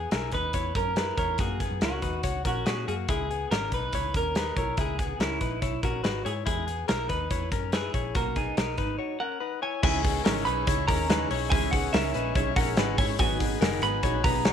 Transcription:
Already playing: B3 G#4
0.11 B1 E4 A#4, snare, closed hi-hat
0.31 D#2 D#4 B4, kick, closed hi-hat
0.53 E2 E4 C#5, kick, closed hi-hat
0.75 F#2 C#4 A#4, kick, closed hi-hat
0.96 E4 B4, snare, closed hi-hat
1.17 E2 E4 A#4 C#5, kick, closed hi-hat
1.38 F#2 A#3 F#4 G#4, kick, closed hi-hat
1.60 B3 G#4, kick, closed hi-hat
1.71 F#2
1.81 C#2 C#4 F#4 A#4, snare, closed hi-hat
2.02 D#2 D#4 B4, kick, closed hi-hat
2.23 C#2 F#4 C#5, kick, closed hi-hat
2.45 A#1 C#4 F#4 A#4, kick, closed hi-hat
2.66 A#2 C#4 F#4 G#4, snare, closed hi-hat
2.88 F#2 A#3 F#4 G#4, closed hi-hat
3.08 C#2 G#3 E4 G#4, kick, closed hi-hat
3.31 B3 G#4, closed hi-hat
3.51 G#1 C#4 A#4, snare, closed hi-hat
3.72 B1 D#4 B4, kick, closed hi-hat
3.93 C#2 E4 C#5, kick, closed hi-hat
4.14 D#2 C#4 A#4, kick, closed hi-hat
4.35 D#4 B4, snare, closed hi-hat
4.56 B1 E4 A#4 C#5, kick, closed hi-hat
4.77 C#2 G#3 E4 G#4, kick, closed hi-hat
4.99 B3 G#4, kick, closed hi-hat
5.20 C#2 C#4 E4 A#4, snare, closed hi-hat
5.41 A#1 D#4 B4, kick, closed hi-hat
5.62 B1 E4 C#5, kick, closed hi-hat
5.83 A#1 C#4 F#4 A#4, kick, closed hi-hat
6.04 G#1 D#4 B4, snare, closed hi-hat
6.25 G#2 E4 G#4 C#5, closed hi-hat
6.46 E2 G#3 E4 G#4, kick, closed hi-hat
6.67 B3 G#4, closed hi-hat
6.88 B1 E4 A#4, snare, closed hi-hat
7.09 D#2 D#4 B4, kick, closed hi-hat
7.30 E2 E4 C#5, kick, closed hi-hat
7.52 F#2 C#4 A#4, kick, closed hi-hat
7.72 E4 G#4 B4, snare, closed hi-hat
7.94 A#1 E4 C#5, kick, closed hi-hat
8.15 B1 A#3 F#4 A#4, kick, closed hi-hat
8.36 B3 D#4 G#4, kick, closed hi-hat
8.57 B1 D#4 A#4, snare, closed hi-hat
8.78 G#1 D#4 B4, kick, closed hi-hat
8.99 F#4 C#5
9.20 C#4 A#4 F#5
9.40 D#4 B4
9.62 E4 C#5 G#5
9.82 C#2 C#3 E3 G#3 C#4 D#4 E4 G#4 C#5 G#5, kick, crash
10.03 G#3 B3 C#4 D#4 G#4, kick, hi-hat pedal, open hi-hat
10.25 G#1 C#3 E3 G#3 C#4 D#4 G#4 A#4, snare, hi-hat pedal, open hi-hat
10.45 B1 G#3 C#4 D#4 G#4 B4 B5, hi-hat pedal, open hi-hat
10.66 C#2 G#3 C#4 D#4 E4 G#4 C#5, kick, hi-hat pedal, open hi-hat
10.87 D#2 G#3 C#4 D#4 G#4 A#4 A#5, kick, hi-hat pedal, open hi-hat
11.09 C#3 E3 G#3 C#4 D#4 G#4 B4, snare, hi-hat pedal, open hi-hat
11.30 B1 G#3 C#4 D#4 E4 G#4 C#5, hi-hat pedal, open hi-hat
11.50 C#2 C#3 E3 G#3 C#4 D#4 E4 G#4 G#5, kick, hi-hat pedal, open hi-hat
11.71 B3 C#4 D#4 G#4 F#5, kick, hi-hat pedal, open hi-hat
11.75 G#3
11.93 C#2 C#3 E3 G#3 C#4 D#4 G#4 A#4 E5, snare, hi-hat pedal, open hi-hat
12.14 A#1 G#3 C#4 D#4 G#4 B4, hi-hat pedal, open hi-hat
12.35 B1 G#3 C#4 D#4 E4 G#4 C#5, kick, hi-hat pedal, open hi-hat
12.56 A#1 G#3 C#4 D#4 G#4 A#4 F#5, kick, hi-hat pedal, open hi-hat
12.77 G#1 C#3 E3 G#3 C#4 D#4 G#4 B4, snare, hi-hat pedal, open hi-hat
12.98 G#2 G#3 C#4 D#4 E4 G#4 C#5 G#5, kick, hi-hat pedal, open hi-hat
13.19 G#1 G#2 D#3 F#3 B3 D#4 F#4 G#4 B4 G#5, kick, hi-hat pedal, open hi-hat
13.39 F#3 B3 D#4 G#4, kick, hi-hat pedal, open hi-hat
13.61 F#1 G#2 D#3 F#3 B3 D#4 G#4 A#4, snare, hi-hat pedal, open hi-hat
13.82 G#1 F#3 B3 D#4 G#4 B4 B5, hi-hat pedal, open hi-hat
14.03 A#1 F#3 B3 D#4 F#4 G#4 C#5, kick, hi-hat pedal, open hi-hat
14.24 B1 F#3 B3 D#4 G#4 B4 A#5, kick, hi-hat pedal, open hi-hat
14.45 G#2 D#3 F#3 B3 D#4 F#4 G#4 C#5, snare, hi-hat pedal, open hi-hat

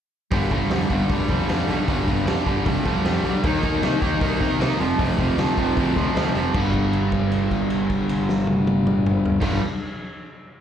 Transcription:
0.31 G1 G2 D3 G3, kick, open hi-hat
0.51 G1 G2 D3 G3, kick, open hi-hat
0.70 F2 G2 D3 G3, snare, open hi-hat
0.90 G1 G2 D3 G3, kick, open hi-hat
1.09 F1 G2 D3 G3, kick, open hi-hat
1.29 F2 G2 D3 G3, kick, open hi-hat
1.49 F2 G2 D3 G3, snare, open hi-hat
1.68 B1 G2 D3 G3, open hi-hat
1.88 G1 G2 D3 G3, kick, open hi-hat
2.08 G1 G2 D3 G3, kick, open hi-hat
2.25 F2 G2 D3 G3, snare, open hi-hat
2.46 G1 G2 D3 G3, kick, open hi-hat
2.66 F1 G2 D3 G3, kick, open hi-hat
2.85 F2 G2 D3 G3, kick, open hi-hat
3.05 F2 G2 D3 G3, snare, open hi-hat
3.23 B1 G2 D3 G3, open hi-hat
3.44 D#2 D#3 A#3 D#4, kick, open hi-hat
3.63 D#2 D#3 A#3 D#4, kick, open hi-hat
3.82 C3 D#3 A#3 D#4, snare, open hi-hat
4.02 D#2 D#3 A#3 D#4, kick, open hi-hat
4.21 C2 D#3 A#3 D#4, kick, open hi-hat
4.41 C3 D#3 A#3 D#4, kick, open hi-hat
4.59 C3 D#3 A#3 D#4, snare, open hi-hat
4.79 F1 F2 C3 F3, open hi-hat
4.99 F1 F2 C3 F3, kick, open hi-hat
5.18 F1 F2 C3 F3, kick, open hi-hat
5.37 D2 F2 C3 F3, snare, open hi-hat
5.57 F1 F2 C3 F3, kick, open hi-hat
5.77 D2 F2 C3 F3, kick, open hi-hat
5.96 D2 F2 C3 F3, kick, open hi-hat
6.15 D2 F2 C3 F3, snare, open hi-hat
6.35 F1 F2 C3 F3, open hi-hat
6.53 G1 G2 D3 G3, kick, crash
6.74 kick, crash
6.93 crash
7.12 kick, crash
7.32 crash
7.51 kick, crash
7.70 crash
7.90 kick, crash
8.09 crash
8.29 snare
8.47 high tom
8.67 high tom
8.87 mid tom
9.06 mid tom
9.26 floor tom
9.41 G1 G2 D3, kick, snare, crash
9.45 G3

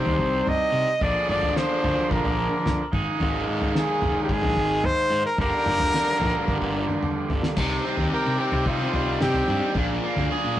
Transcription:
Already playing: C3 G3 C4 D#4 G4 C5
0.05 D#2, floor tom
0.19 C2, kick
0.47 D#5, floor tom, mid tom
0.72 C3
1.01 A#1 A#2 D3 F3 A#3 D4 G#4 D5, kick, floor tom
1.28 G#1 D5, mid tom
1.43 floor tom
1.56 C5, snare
1.83 D2, floor tom, mid tom
2.11 A#1 A#4, kick
2.24 A#1, floor tom
2.66 snare, floor tom, mid tom
2.91 G#1 D#3 G#3 A#3 D#4 G#4, kick, mid tom
3.20 G#1, floor tom
3.47 G#2
3.61 floor tom
3.75 G#4, snare
4.01 F1, floor tom, mid tom
4.23 G4
4.29 G#2 G#4, kick
4.42 A#1, floor tom
4.56 G#1, kick
4.84 C5, floor tom, mid tom
5.10 G#2
5.25 A#4
5.37 G1 G2 D3 G3 A#3 D4 G4 A#4, kick, floor tom
5.65 F1, mid tom
5.80 floor tom
5.94 snare
6.20 A#1, floor tom, mid tom
6.48 G1, kick
6.61 G1, kick
6.89 mid tom
7.03 mid tom
7.29 G1, floor tom
7.43 snare
7.56 C2 C3 G3 C4 D#4 G4, kick, floor tom, crash
7.84 G3 C4 D#4 G4
7.97 D#2 C4 D#4 G4, floor tom
8.10 G3 C4 D#4 G4 A#4
8.26 C3
8.38 G3 C4 D#4 G4
8.52 C3, floor tom
8.66 D#4 F4, kick
8.79 C4 D#4 G4
8.93 C2 G3 C4 D#4 G4, floor tom
9.07 C4 D#4 G4
9.21 C3 G3 C4 D#4 G4, snare, mid tom
9.34 floor tom
9.47 G2 G3 C4 D#4 G4, mid tom
9.61 C4 D#4 G4
9.75 A#1 A#2 F3 A#3 D4 G#4, kick, floor tom
10.03 F3 A#3 D4 G#4
10.16 D2 A#3 D4 G#4, floor tom, mid tom
10.29 F3 A#3 D4 G#4
10.44 A#2
10.56 F3

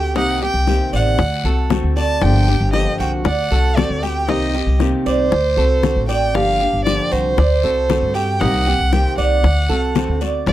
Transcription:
Already playing: D2 A3 C4 F#4 G4 G5
0.15 C2 C3 D#3 A#3 C4 D#4 G4 F#5, high bongo, long guiro
0.42 A#3 C4 G4 G5, high bongo
0.54 C2
0.67 C3 D#3 A#3 C4 G4, high bongo, short guiro
0.92 A1 D5 F#5, short guiro
1.18 D2, muted nylon-string guitar stroke, high bongo, long guiro
1.44 C2 A3 C4 F#4 A4, high bongo
1.70 D3 A3 C4 F#4, high bongo, low bongo, short guiro
1.83 D2
1.96 A3 C4 F#4 D5 A5, high bongo, short guiro
2.22 G1 D3 F3 A#3 D4 G4 G5, high bongo, long guiro
2.48 A#3 D4 G4
2.60 G1
2.73 D3 F3 A#3 D4 G4 D#5, high bongo, short guiro
2.99 C2 F#4 G5, short guiro
3.25 D2 D5 F#5, muted nylon-string guitar stroke, high bongo, long guiro
3.51 C2 A3 C4 F#4 A4
3.76 D3 A3 C4 F#4 D5, high bongo, low bongo, short guiro
3.89 D2
4.02 A3 C4 F#4 G4 G5, short guiro
4.27 C2 C3 D#3 A#3 C4 D#4 G4 D#5, high bongo, long guiro
4.53 A#3 C4 G4, high bongo
4.66 C2
4.79 C3 D#3 A#3 C4 G4, high bongo, short guiro
5.06 C2 C5 D5, short guiro
5.31 D2, muted nylon-string guitar stroke, high bongo, long guiro
5.57 C2 A3 C4 F#4 A4, high bongo
5.82 D3 A3 C4 F#4, high bongo, low bongo, short guiro
5.96 A1
6.08 A3 C4 F#4 D5 G5, high bongo, short guiro
6.34 G1 D3 F3 A#3 D4 G4 F5, high bongo, long guiro
6.60 A#3 D4 G4
6.73 G1
6.85 D3 F3 A#3 D4 G4 D5, high bongo, short guiro
7.12 C2 F#4 C5, short guiro
7.37 D2 D5, muted nylon-string guitar stroke, high bongo, long guiro
7.63 C2 A3 C4 F#4 A4
7.89 D3 A3 C4 F#4, high bongo, low bongo, short guiro
8.02 G2
8.14 A3 C4 F#4 G4 G5, short guiro
8.40 C2 C3 D#3 A#3 C4 D#4 G4 F#5, high bongo, long guiro
8.66 A#3 C4 G4, high bongo
8.79 C2
8.92 C3 D#3 A#3 C4 G4 G5, high bongo, short guiro
9.18 C2 D5 F#5, short guiro
9.43 D2, muted nylon-string guitar stroke, high bongo, long guiro
9.69 C2 A3 C4 F#4 A4, high bongo
9.95 D3 A3 C4 F#4, high bongo, low bongo, short guiro
10.08 D2
10.21 A3 C4 F#4 D5, high bongo, short guiro
10.46 G1 D3 F3 A#3 D4 G4 D5, high bongo, long guiro

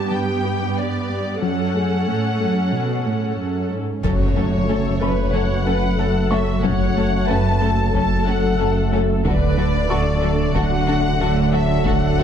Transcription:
Already playing: G2 B3 G4 A5
0.11 G3 G5
0.45 G4
0.78 D5
1.10 B3
1.42 F#2 F#3 C#4 A4 F#5
1.75 A3 G#4 G#5
2.08 A2 A3
2.40 F#2 A3
2.72 B2 F#3
3.05 A2 F#4
3.38 F#2
3.70 G#2 A4
4.03 F#1 F#2 F#3 A3 C#4 F#4 A4 C#5, taiko, impact
4.36 A3 C#4 A4
4.68 F#1 F#2 A3 C#4 A4
5.01 A3 C#4 A4 B4 B5
5.33 F#1 F#2 F#3 C#4 A4 C#5 F#5
5.65 C#4 F#4 A4 B4
5.98 F#1 F#2 C#4 A4
6.30 A3 C#4 A4 C#5 E5 C#6
6.63 F#1 F#2 F#3 C#4 A4 C#5 F#5, taiko
6.96 A3 C#4 A4
7.28 F#1 F#2 A3 C#4 A4 B4 A5
7.61 A3 C#4 A4
7.94 F#1 F#2 F#3 C#4 A4 A5, taiko
8.27 C#4 F#4 A4 F#5
8.60 F#1 F#2 C#4 A4
8.92 A3 C#4 A4
9.25 D1 D2 D3 F#3 A3 F#4 A4 B4 D5, taiko
9.58 F#3 F#4 A4
9.89 D2 D3 F#3 F#4 A4 D5 C#6
10.22 F#3 F#4 A4
10.55 D2 D3 F#4 A4 F#5, taiko
10.87 D4 F#4 A4
11.20 D2 D3 F#4 A4
11.52 F#3 F#4 A4 E5
11.85 D2 D3 F#4 A4 F#5, taiko
12.18 F#3 F#4 A4

